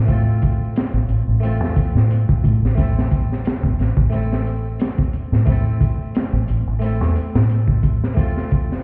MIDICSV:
0, 0, Header, 1, 4, 480
1, 0, Start_track
1, 0, Key_signature, 0, "minor"
1, 0, Tempo, 674157
1, 60, Time_signature, 4, 2, 24, 8
1, 6291, End_track
2, 0, Start_track
2, 0, Title_t, "Harpsichord"
2, 0, Program_c, 0, 6
2, 39, Note_on_c, 0, 57, 67
2, 57, Note_on_c, 0, 60, 67
2, 73, Note_on_c, 0, 65, 63
2, 87, Note_on_c, 0, 69, 79
2, 984, Note_off_c, 0, 57, 0
2, 992, Note_off_c, 0, 60, 0
2, 998, Note_on_c, 0, 57, 82
2, 1001, Note_off_c, 0, 65, 0
2, 1007, Note_off_c, 0, 69, 0
2, 1017, Note_on_c, 0, 60, 78
2, 1032, Note_on_c, 0, 65, 78
2, 1045, Note_on_c, 0, 69, 90
2, 1943, Note_off_c, 0, 57, 0
2, 1952, Note_off_c, 0, 60, 0
2, 1958, Note_on_c, 0, 57, 66
2, 1960, Note_off_c, 0, 65, 0
2, 1966, Note_off_c, 0, 69, 0
2, 1972, Note_on_c, 0, 60, 61
2, 1987, Note_on_c, 0, 64, 59
2, 2003, Note_on_c, 0, 69, 74
2, 2903, Note_off_c, 0, 57, 0
2, 2910, Note_off_c, 0, 60, 0
2, 2917, Note_off_c, 0, 64, 0
2, 2917, Note_on_c, 0, 57, 87
2, 2925, Note_off_c, 0, 69, 0
2, 2934, Note_on_c, 0, 60, 80
2, 2950, Note_on_c, 0, 64, 74
2, 2965, Note_on_c, 0, 69, 86
2, 3863, Note_off_c, 0, 57, 0
2, 3871, Note_off_c, 0, 60, 0
2, 3879, Note_off_c, 0, 64, 0
2, 3882, Note_on_c, 0, 57, 69
2, 3886, Note_off_c, 0, 69, 0
2, 3896, Note_on_c, 0, 60, 63
2, 3912, Note_on_c, 0, 64, 65
2, 3928, Note_on_c, 0, 69, 82
2, 4825, Note_off_c, 0, 57, 0
2, 4832, Note_off_c, 0, 60, 0
2, 4837, Note_on_c, 0, 57, 90
2, 4840, Note_off_c, 0, 64, 0
2, 4848, Note_off_c, 0, 69, 0
2, 4854, Note_on_c, 0, 60, 77
2, 4870, Note_on_c, 0, 64, 81
2, 4884, Note_on_c, 0, 69, 95
2, 5782, Note_off_c, 0, 57, 0
2, 5791, Note_off_c, 0, 60, 0
2, 5798, Note_on_c, 0, 57, 76
2, 5799, Note_off_c, 0, 64, 0
2, 5806, Note_off_c, 0, 69, 0
2, 5815, Note_on_c, 0, 60, 66
2, 5831, Note_on_c, 0, 65, 65
2, 5845, Note_on_c, 0, 69, 73
2, 6291, Note_off_c, 0, 57, 0
2, 6291, Note_off_c, 0, 60, 0
2, 6291, Note_off_c, 0, 65, 0
2, 6291, Note_off_c, 0, 69, 0
2, 6291, End_track
3, 0, Start_track
3, 0, Title_t, "Fingered electric bass"
3, 0, Program_c, 1, 33
3, 0, Note_on_c, 1, 45, 78
3, 518, Note_off_c, 1, 45, 0
3, 667, Note_on_c, 1, 33, 90
3, 765, Note_off_c, 1, 33, 0
3, 774, Note_on_c, 1, 33, 71
3, 892, Note_off_c, 1, 33, 0
3, 908, Note_on_c, 1, 33, 86
3, 1144, Note_off_c, 1, 33, 0
3, 1144, Note_on_c, 1, 40, 93
3, 1244, Note_off_c, 1, 40, 0
3, 1389, Note_on_c, 1, 45, 82
3, 1632, Note_off_c, 1, 45, 0
3, 1632, Note_on_c, 1, 40, 83
3, 1728, Note_off_c, 1, 40, 0
3, 1739, Note_on_c, 1, 45, 76
3, 1854, Note_off_c, 1, 45, 0
3, 1868, Note_on_c, 1, 33, 87
3, 2438, Note_off_c, 1, 33, 0
3, 2587, Note_on_c, 1, 33, 97
3, 2685, Note_off_c, 1, 33, 0
3, 2694, Note_on_c, 1, 33, 70
3, 2812, Note_off_c, 1, 33, 0
3, 2827, Note_on_c, 1, 33, 95
3, 3397, Note_off_c, 1, 33, 0
3, 3788, Note_on_c, 1, 45, 77
3, 4358, Note_off_c, 1, 45, 0
3, 4507, Note_on_c, 1, 33, 97
3, 4605, Note_off_c, 1, 33, 0
3, 4620, Note_on_c, 1, 33, 78
3, 4735, Note_off_c, 1, 33, 0
3, 4750, Note_on_c, 1, 33, 86
3, 4990, Note_off_c, 1, 33, 0
3, 4990, Note_on_c, 1, 40, 94
3, 5087, Note_off_c, 1, 40, 0
3, 5233, Note_on_c, 1, 45, 80
3, 5800, Note_off_c, 1, 45, 0
3, 6291, End_track
4, 0, Start_track
4, 0, Title_t, "Drums"
4, 57, Note_on_c, 9, 42, 81
4, 58, Note_on_c, 9, 36, 94
4, 128, Note_off_c, 9, 42, 0
4, 129, Note_off_c, 9, 36, 0
4, 298, Note_on_c, 9, 42, 63
4, 305, Note_on_c, 9, 36, 89
4, 369, Note_off_c, 9, 42, 0
4, 376, Note_off_c, 9, 36, 0
4, 541, Note_on_c, 9, 42, 95
4, 552, Note_on_c, 9, 38, 113
4, 612, Note_off_c, 9, 42, 0
4, 623, Note_off_c, 9, 38, 0
4, 773, Note_on_c, 9, 42, 53
4, 845, Note_off_c, 9, 42, 0
4, 1020, Note_on_c, 9, 42, 86
4, 1091, Note_off_c, 9, 42, 0
4, 1165, Note_on_c, 9, 38, 35
4, 1236, Note_off_c, 9, 38, 0
4, 1256, Note_on_c, 9, 36, 85
4, 1262, Note_on_c, 9, 42, 75
4, 1327, Note_off_c, 9, 36, 0
4, 1333, Note_off_c, 9, 42, 0
4, 1400, Note_on_c, 9, 38, 36
4, 1471, Note_off_c, 9, 38, 0
4, 1499, Note_on_c, 9, 42, 71
4, 1570, Note_off_c, 9, 42, 0
4, 1630, Note_on_c, 9, 36, 85
4, 1702, Note_off_c, 9, 36, 0
4, 1736, Note_on_c, 9, 36, 91
4, 1738, Note_on_c, 9, 42, 68
4, 1807, Note_off_c, 9, 36, 0
4, 1810, Note_off_c, 9, 42, 0
4, 1886, Note_on_c, 9, 38, 35
4, 1958, Note_off_c, 9, 38, 0
4, 1978, Note_on_c, 9, 36, 108
4, 1982, Note_on_c, 9, 42, 80
4, 2049, Note_off_c, 9, 36, 0
4, 2053, Note_off_c, 9, 42, 0
4, 2125, Note_on_c, 9, 38, 44
4, 2197, Note_off_c, 9, 38, 0
4, 2218, Note_on_c, 9, 36, 91
4, 2218, Note_on_c, 9, 42, 66
4, 2289, Note_off_c, 9, 36, 0
4, 2289, Note_off_c, 9, 42, 0
4, 2367, Note_on_c, 9, 38, 36
4, 2438, Note_off_c, 9, 38, 0
4, 2457, Note_on_c, 9, 42, 86
4, 2473, Note_on_c, 9, 38, 110
4, 2528, Note_off_c, 9, 42, 0
4, 2544, Note_off_c, 9, 38, 0
4, 2587, Note_on_c, 9, 36, 72
4, 2659, Note_off_c, 9, 36, 0
4, 2698, Note_on_c, 9, 42, 53
4, 2712, Note_on_c, 9, 38, 32
4, 2769, Note_off_c, 9, 42, 0
4, 2783, Note_off_c, 9, 38, 0
4, 2826, Note_on_c, 9, 36, 87
4, 2897, Note_off_c, 9, 36, 0
4, 2936, Note_on_c, 9, 42, 83
4, 3007, Note_off_c, 9, 42, 0
4, 3079, Note_on_c, 9, 38, 45
4, 3151, Note_off_c, 9, 38, 0
4, 3176, Note_on_c, 9, 42, 55
4, 3248, Note_off_c, 9, 42, 0
4, 3414, Note_on_c, 9, 42, 78
4, 3429, Note_on_c, 9, 38, 94
4, 3485, Note_off_c, 9, 42, 0
4, 3500, Note_off_c, 9, 38, 0
4, 3549, Note_on_c, 9, 36, 91
4, 3620, Note_off_c, 9, 36, 0
4, 3653, Note_on_c, 9, 42, 65
4, 3725, Note_off_c, 9, 42, 0
4, 3797, Note_on_c, 9, 38, 42
4, 3868, Note_off_c, 9, 38, 0
4, 3891, Note_on_c, 9, 42, 80
4, 3893, Note_on_c, 9, 36, 111
4, 3962, Note_off_c, 9, 42, 0
4, 3964, Note_off_c, 9, 36, 0
4, 4134, Note_on_c, 9, 36, 84
4, 4141, Note_on_c, 9, 42, 67
4, 4205, Note_off_c, 9, 36, 0
4, 4212, Note_off_c, 9, 42, 0
4, 4377, Note_on_c, 9, 42, 82
4, 4390, Note_on_c, 9, 38, 98
4, 4448, Note_off_c, 9, 42, 0
4, 4461, Note_off_c, 9, 38, 0
4, 4612, Note_on_c, 9, 42, 65
4, 4684, Note_off_c, 9, 42, 0
4, 4853, Note_on_c, 9, 42, 86
4, 4924, Note_off_c, 9, 42, 0
4, 4997, Note_on_c, 9, 38, 37
4, 5068, Note_off_c, 9, 38, 0
4, 5094, Note_on_c, 9, 42, 66
4, 5165, Note_off_c, 9, 42, 0
4, 5237, Note_on_c, 9, 38, 117
4, 5308, Note_off_c, 9, 38, 0
4, 5335, Note_on_c, 9, 42, 84
4, 5406, Note_off_c, 9, 42, 0
4, 5465, Note_on_c, 9, 36, 85
4, 5536, Note_off_c, 9, 36, 0
4, 5576, Note_on_c, 9, 36, 96
4, 5576, Note_on_c, 9, 42, 66
4, 5647, Note_off_c, 9, 36, 0
4, 5648, Note_off_c, 9, 42, 0
4, 5722, Note_on_c, 9, 38, 43
4, 5793, Note_off_c, 9, 38, 0
4, 5817, Note_on_c, 9, 36, 113
4, 5822, Note_on_c, 9, 42, 87
4, 5889, Note_off_c, 9, 36, 0
4, 5893, Note_off_c, 9, 42, 0
4, 5960, Note_on_c, 9, 38, 37
4, 6031, Note_off_c, 9, 38, 0
4, 6058, Note_on_c, 9, 42, 63
4, 6066, Note_on_c, 9, 36, 87
4, 6129, Note_off_c, 9, 42, 0
4, 6137, Note_off_c, 9, 36, 0
4, 6208, Note_on_c, 9, 38, 35
4, 6279, Note_off_c, 9, 38, 0
4, 6291, End_track
0, 0, End_of_file